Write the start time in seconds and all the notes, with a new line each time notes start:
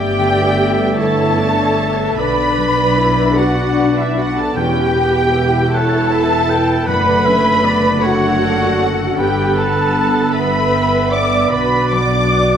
Already playing: G1 G2 A3 B3 D4 G4 A4 D5 E5 G5
0.18 D3
0.59 D4
0.98 E4 A4 C#5 A5
1.38 D4 D5
1.78 D4 A4
2.18 B1 B2 B3 D4 B4 D5 B5
2.57 F#3 D4
2.98 D4 E4
3.37 D4 F#4 B4 F#5
3.77 D5
3.97 E4 E5
4.16 F#4 B4 F#5
4.36 A4 A5
4.55 E1 E2 C#4 E4 G4 B4 G5
4.95 B2 B3
5.34 E4
5.73 A4 B4 C#5 F#5 A5
6.11 B4 E5
6.49 B4 G5
6.86 F#1 F#2 D3 A3 D4 B4 F#5 B5
7.24 F#3 C#4 E5
7.63 B3 A4 D5
8.01 A3 D4 F#4 A4 C#5 F#5
8.41 D4 A5
8.79 C#4 A4
9.18 G1 G2 B3 G4 B4 G5
9.57 D3 A4 A5
9.95 G4
10.33 B4 E5 B5
10.74 G5
11.12 B4 D5 D6
11.50 B1 B2 D4 F#4 B4 D5 B5
11.91 F#3 D5 D6
12.32 F#4